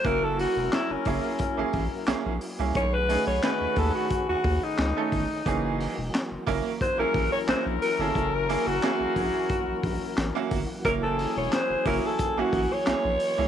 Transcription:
<<
  \new Staff \with { instrumentName = "Alto saxophone" } { \time 4/4 \key fis \mixolydian \tempo 4 = 89 ais'16 a'16 fis'8 e'16 cis'4. r4 r16 | cis''16 b'8 cis''16 b'8 a'16 fis'8 fis'8 dis'4~ dis'16~ | dis'4~ dis'16 r8. bis'16 ais'8 cis''16 bis'8 ais'16 a'16~ | a'16 ais'8 fis'2~ fis'8 r8. |
ais'16 a'8 cis''16 bis'8 ais'16 a'8 fis'8 cis''4~ cis''16 | }
  \new Staff \with { instrumentName = "Horn section" } { \time 4/4 \key fis \mixolydian <cis' e' ais'>2.~ <cis' e' ais'>8 r8 | <fis' gis' b'>2.~ <fis' gis' b'>8 r8 | r2 <cis' e' ais'>2~ | <cis' e' ais'>2.~ <cis' e' ais'>8 r8 |
<cis' e' gis'>2.~ <cis' e' gis'>8 r8 | }
  \new Staff \with { instrumentName = "Upright piano" } { \time 4/4 \key fis \mixolydian <ais cis' e' fis'>8. r8. <ais cis' e' gis'>16 r8 <ais cis' e' gis'>16 r8 <ais cis' e' gis'>16 r8 <ais cis' e' gis'>16 | r8 <a cis' dis' gis'>16 r16 <a cis' dis' b'>4 r4 r16 <a cis' dis' a'>16 r8 | <e ais cis' gis'>8. r8. <ais cis' e' ais'>16 r8 <ais cis' e' gis'>16 r8 <ais cis' e' fis'>16 r8 <ais cis' e' gis'>16 | r8 <ais cis' e' gis'>16 r16 <ais cis' e' gis'>4 r4 r16 <ais cis' e' fis'>16 r8 |
<ais cis' e' ais'>8. r8. <ais cis' e' fis'>16 r8 <ais cis' e' fis'>16 r8 <ais cis' e' gis'>16 r8 <ais cis' e' gis'>16 | }
  \new Staff \with { instrumentName = "Tonewheel organ" } { \time 4/4 \key fis \mixolydian <fis ais e' fis'>1 | <dis a cis' gis'>1 | <e fis ais fis'>1~ | <e fis ais fis'>1~ |
<e fis ais fis'>1 | }
  \new Staff \with { instrumentName = "Sub bass" } { \clef bass \time 4/4 \key fis \mixolydian fis,,8. e,,16 r16 fis,,16 fis,,16 r8 a,,16 a,,16 r16 ais,,16 ais,,16 r16 bis,,16 | b,,8. b,,16 r16 dis,16 dis,16 r8 dis,16 dis,16 r16 cis,16 r16 g,,16 r16 | fis,,8. e,,16 r16 fis,,16 fis,,16 r8 a,,16 a,,16 r16 ais,,16 ais,,16 r16 g,,16 | fis,,8. fis,,16 r16 ais,,16 ais,,16 r8 ais,,16 ais,,16 r16 a,,16 r16 g,,16 r16 |
fis,,8. e,,16 r16 fis,,16 fis,,16 r8 a,,16 a,,16 r16 ais,,16 ais,,16 r16 bis,,16 | }
  \new DrumStaff \with { instrumentName = "Drums" } \drummode { \time 4/4 <hh bd>8 hho8 <hc hh sn>8 <hho bd>8 <hh bd>8 <hho bd>8 <hc hh sn>8 hho8 | <hh bd>8 hho8 <hc hh sn>8 <hho bd>8 <hh bd>8 <hho bd>8 <hc hh sn>8 <hho bd>8 | <hh bd>8 hho8 <hc hh sn>8 <hho bd>8 <hh bd>8 <hho bd>8 <hc hh sn>8 hho8 | <hh bd>8 hho8 <hc hh sn>8 <hho bd>8 <hh bd>8 <hho bd>8 <hc hh sn>8 <hho bd>8 |
<hh bd>8 hho8 <hc hh sn>8 <hho bd>8 <hh bd>8 <hho bd>8 <hc hh sn>8 hho8 | }
>>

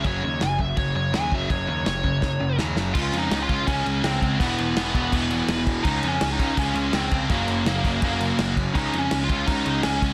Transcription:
<<
  \new Staff \with { instrumentName = "Lead electric guitar" } { \time 4/4 \key ges \lydian \tempo 4 = 165 des''8 des''8 aes''8 fes''8 des''8 des''8 aes''8 fes''8 | des''8 des''8 des''2 r4 | \tuplet 3/2 { f'4 ees'8~ ees'8 f'4 } des'4 c'4 | b4 b8 b2 r8 |
\tuplet 3/2 { ees'4 des'8~ des'8 ees'4 } des'4 c'4 | bes4 bes4 bes4. r8 | \tuplet 3/2 { ees'4 des'8~ des'8 f'4 } ees'4 des'4 | }
  \new Staff \with { instrumentName = "Distorted electric guitar" } { \clef bass \time 4/4 \key ges \lydian <ges, des ges>8 <ges, des>8 <ges, des>8 <ges, des>8 <ges, des>8 <ges, des>8 <ges, des ges>8 <ges, des ges>8 | <ges, des>8 <ges, des>8 <ges, des>8 <ges, des>8 <ges, des>8 <ges, des>8 <ges, des ges>8 <ges, des ges>8 | <des aes des'>2~ <des aes des'>8 <des aes des'>8 <des aes des'>4 | <e, b, e>2~ <e, b, e>8 <e, b, e>8 <e, b, e>4 |
<des aes des'>2~ <des aes des'>8 <des aes des'>8 <des aes des'>4 | <ges, des ges>2~ <ges, des ges>8 <ges, des ges>8 <ges, des ges>4 | <des aes des'>2~ <des aes des'>8 <des aes des'>8 <des aes des'>4 | }
  \new Staff \with { instrumentName = "Distorted electric guitar" } { \clef bass \time 4/4 \key ges \lydian <ges, des ges>8 <ges, des>8 <ges, des>8 <ges, des>8 <ges, des>8 <ges, des>8 <ges, des ges>8 <ges, des ges>8 | <ges, des>8 <ges, des>8 <ges, des>8 <ges, des>8 <ges, des>8 <ges, des>8 <ges, des ges>8 <ges, des ges>8 | <des aes des'>4. <des aes des'>2~ <des aes des'>8 | <e, b, e>4. <e, b, e>2~ <e, b, e>8 |
<des aes des'>4. <des aes des'>2~ <des aes des'>8 | <ges, des ges>4. <ges, des ges>2~ <ges, des ges>8 | <des aes des'>4. <des aes des'>2~ <des aes des'>8 | }
  \new Staff \with { instrumentName = "Overdriven electric guitar" } { \clef bass \time 4/4 \key ges \lydian <ges, des ges>2.~ <ges, des ges>8 <ges, des ges>8 | <ges, des ges>2.~ <ges, des ges>8 <ges, des ges>8 | <des aes des'>2 <des aes des'>2 | <e, b, e>2 <e, b, e>2 |
<des aes des'>2 <des aes des'>2 | <ges, des ges>2 <ges, des ges>2 | <des aes des'>2 <des aes des'>2 | }
  \new Staff \with { instrumentName = "Picked electric bass" } { \clef bass \time 4/4 \key ges \lydian ges,,8 ees,8 ges,,8 ges,,8 ges,,8 ges,,8 ees,8 ges,,8 | ges,,8 ees,8 ges,,8 ges,,8 ges,,8 ges,,8 ees,8 ges,,8 | des,8 f,8 des,8 des,8 des,8 des,8 des,8 des,8 | e,,8 e,,8 e,,8 e,,8 e,,4 e,,4 |
des,8 f,8 des,8 des,8 des,8 des,8 des,8 des,8 | ges,,8 ges,,8 ges,,8 ges,,8 ges,,4 ges,,4 | des,8 f,8 des,8 des,8 des,8 des,8 des,8 des,8 | }
  \new DrumStaff \with { instrumentName = "Drums" } \drummode { \time 4/4 <cymc bd>4 <cymc sn>8 bd8 <cymc bd>4 <cymc sn>8 bd8 | <cymc bd>4 <cymc sn>8 bd8 <bd sn>4 sn8 sn8 | <cymc bd>8 cymc8 <cymc sn>8 <cymc bd>8 <cymc bd>8 cymc8 <cymc sn>8 <cymc bd>8 | <cymc bd>8 cymc8 <cymc sn>8 <cymc bd>8 <cymc bd>8 cymc8 <cymc sn>8 <cymc bd>8 |
<cymc bd>8 cymc8 <cymc sn>8 <cymc bd>8 <cymc bd>8 cymc8 <cymc sn>8 <cymc bd>8 | <cymc bd>8 cymc8 <cymc sn>8 <cymc bd>8 <cymc bd>8 cymc8 <cymc sn>8 <cymc bd>8 | <cymc bd>8 cymc8 <cymc sn>8 <cymc bd>8 <cymc bd>8 cymc8 <cymc sn>8 <cymc bd>8 | }
>>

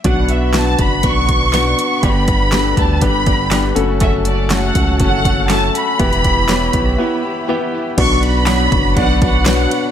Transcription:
<<
  \new Staff \with { instrumentName = "Violin section" } { \time 4/4 \key b \minor \tempo 4 = 121 fis''8 e''8 a''8 b''8 cis'''2 | b''4. a''8 b''4. r8 | e''8 d''8 fis''4 fis''4 a''8 b''8~ | b''2. r4 |
cis'''8 b''4. fis''8 fis''4. | }
  \new Staff \with { instrumentName = "String section" } { \time 4/4 \key b \minor << { <b' d'' b''>1~ | <b' d'' b''>2.~ <b' d'' b''>8 <a' cis'' a''>8~ | <a' cis'' a''>1 | <b' e'' b''>1 |
<d' b' b''>1 | } \\ { fis'1 | g'2.~ g'8 fis'8~ | fis'1 | g'1 |
fis'1 | } >> }
  \new Staff \with { instrumentName = "Grand piano" } { \time 4/4 \key b \minor <b d' fis' b'>4 <b d' fis' b'>4 <b d' fis' b'>4 <b d' fis' b'>4 | <b d' g' b'>4 <b d' g' a' b'>4 <b d' g' b'>4 <b d' g' b'>8 <a cis' fis' a'>8~ | <a cis' fis' a'>4 <a cis' fis' a'>4 <a cis' fis' a'>4 <a cis' fis' a'>4 | <b e' g' b'>4 <b e' g' cis''>4 <b e' g' b'>4 <b e' g' b'>4 |
<b d' fis' b' d''>4 <b d' fis' b' cis''>4 <b d' fis' b' d''>4 <b d' fis' b' cis''>4 | }
  \new Staff \with { instrumentName = "Grand piano" } { \clef bass \time 4/4 \key b \minor b,4. r2 r8 | g,4. r2 r8 | r1 | e4. r2 r8 |
b,4. r2 r8 | }
  \new Staff \with { instrumentName = "Clean electric guitar" } { \time 4/4 \key b \minor <b, fis b d' fis'>8 <b d' fis'>8 <b, fis b d' fis'>8 <b d' fis'>8 <fis b d' fis'>8 <b d' fis'>8 <b, fis b d' fis'>8 <b d' fis'>8 | <g, d g b d' g'>8 <g b d' g'>8 <g, d g b d' g'>8 <g b d' g'>8 <g b d' g'>8 <g b d' g'>8 <g, d g b d' g'>8 <fis a cis' fis'>8 | <fis, cis fis a cis' fis'>8 <fis a cis' fis'>8 <fis, cis fis a cis' fis'>8 <fis a cis' fis'>8 <fis a cis' fis'>8 <fis a cis' fis'>8 <fis, cis fis a cis' fis'>8 <fis a cis' fis'>8 | <e b e' g'>8 <b e' g'>8 <e b e' g'>8 <b e' g'>8 <e b e' g'>8 <b e' g'>8 <e b e' g'>8 <b e' g'>8 |
<b, fis b d' fis'>8 <b d' fis'>8 <b, fis b d' fis'>8 <b d' fis'>8 <fis b d' fis'>8 <b d' fis'>8 <b, fis b d' fis'>8 <b d' fis'>8 | }
  \new Staff \with { instrumentName = "Analog synth bass" } { \clef bass \time 4/4 \key b \minor b,,4. fis,,8 b,,4. r8 | g,,4. d,8 g,,4. fis,,8~ | fis,,4. cis,8 fis,,4. r8 | e,,4. b,,8 r2 |
b,,4. fis,,8 b,,4. r8 | }
  \new DrumStaff \with { instrumentName = "Drums" } \drummode { \time 4/4 <hh bd>8 hh8 <hc hh sn>8 <hh bd>8 <hh bd>8 <hh bd>8 <hc hh sn>8 hh8 | <hh bd>8 <hh bd>8 <hc hh sn>8 <hh bd>8 <hh bd>8 <hh bd>8 <hc hh sn>8 hh8 | <hh bd>8 hh8 <hc hh sn>8 <hh bd>8 <hh bd>8 <hh bd>8 <hc hh sn>8 hh8 | <hh bd>16 hh16 <hh bd>8 <hc hh sn>8 <hh bd>8 r4 r4 |
<cymc bd cymr>8 cymr8 <hc cymr sn>8 <bd cymr>8 <bd cymr>8 <bd cymr>8 <hc cymr sn>8 cymr8 | }
>>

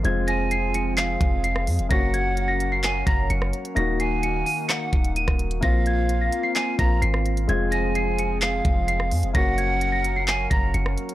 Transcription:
<<
  \new Staff \with { instrumentName = "Celesta" } { \time 4/4 \key f \phrygian \tempo 4 = 129 aes'''8 bes'''8 c''''8 des''''8 c''''4 c''''8 r8 | bes'''8 aes'''8. bes'''8 c''''16 c''''8 bes'''8 des''''4 | bes'''8 c''''8 des''''8 ees''''8 des''''4 ees''''4 | bes'''8 aes'''8. bes'''8 c''''16 c''''8 bes'''8 c''''4 |
aes'''8 bes'''8 c''''8 des''''8 c''''4 c''''8 r8 | bes'''8 aes'''8. bes'''8 c''''16 c''''8 bes'''8 des''''4 | }
  \new Staff \with { instrumentName = "Pan flute" } { \time 4/4 \key f \phrygian r8 aes''4. f''2 | ges''2 aes''8 bes''8 r4 | r8 aes''4. ges''4 r4 | f''2 aes''8 bes''8 r4 |
r8 aes''4. f''2 | ges''2 aes''8 bes''8 r4 | }
  \new Staff \with { instrumentName = "Analog synth pad" } { \time 4/4 \key f \phrygian << { <f aes'>1 | <ges bes'>1 | <ees ges'>1 | <bes f'>1 |
<f aes'>1 | <ges bes'>1 | } \\ { c'1 | des'1 | bes1 | c'1~ |
c'1 | des'1 | } >> }
  \new Staff \with { instrumentName = "Grand piano" } { \time 4/4 \key f \phrygian <aes c' f'>1 | <bes des' ges'>1 | <bes ees' ges'>1 | <bes c' f'>2~ <bes c' f'>8 <bes c' f'>4. |
<aes c' f'>1 | <bes des' ges'>1 | }
  \new Staff \with { instrumentName = "808-style bass" } { \clef bass \time 4/4 \key f \phrygian f,,2~ f,,8 f,,4 f,16 f,,16 | ges,,2~ ges,,8 ges,,8 ges,,8 r8 | ees,,4. r4 ees,,8. ees,,8. | bes,,4. r4 bes,,8 aes,,4 |
f,,2~ f,,8 f,,4 f,16 f,,16 | ges,,2~ ges,,8 ges,,8 ges,,8 r8 | }
  \new DrumStaff \with { instrumentName = "Drums" } \drummode { \time 4/4 hh8 hh8 hh8 hh8 <hc hh>8 <hh bd>8 hh16 ss16 <hh hho>16 hh16 | <hh bd>8 hh8 hh8 hh8 <hc hh>8 <hh bd>8 hh16 ss16 hh16 hh16 | hh8 hh8 hh8 hho8 <hc hh ss>8 <hh bd>16 hh16 hh16 <bd ss>16 hh16 hh16 | <hh bd>8 hh8 hh8 hh8 <hc hh>8 <hh bd>8 hh16 ss16 hh16 hh16 |
hh8 hh8 hh8 hh8 <hc hh>8 <hh bd>8 hh16 ss16 <hh hho>16 hh16 | <hh bd>8 hh8 hh8 hh8 <hc hh>8 <hh bd>8 hh16 ss16 hh16 hh16 | }
>>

